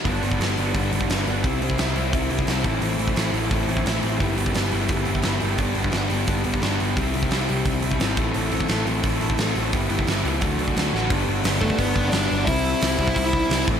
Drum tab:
HH |o-o-o-o-o-o-o-o-|o-o-o-o-o-o-o-o-|o-o-o-o-o-o-o-o-|o-o-o-o-o-o-o-o-|
SD |----o-------o---|----o-------o---|----o-------o---|----o-------o---|
BD |o--o----o--o----|o--o----o--o--o-|---o----o--o----|o--o----o--o----|

HH |o-o-o-o-o-o-o-o-|o-o-o-o-o-o-o-o-|o-o-o-o-o-o-o-o-|o-o-o-o-o-o-o---|
SD |----o-------o---|----o-------o---|----o-------o---|----o-------o-o-|
BD |o--o----o--o----|o--o----o--o--o-|---o----o--o----|o--o----o--o----|

HH |o---o---o---o---|o---o---o---o---|
SD |----o-------o---|----o-------o---|
BD |o-----ooo-o-----|o-----ooo-o---o-|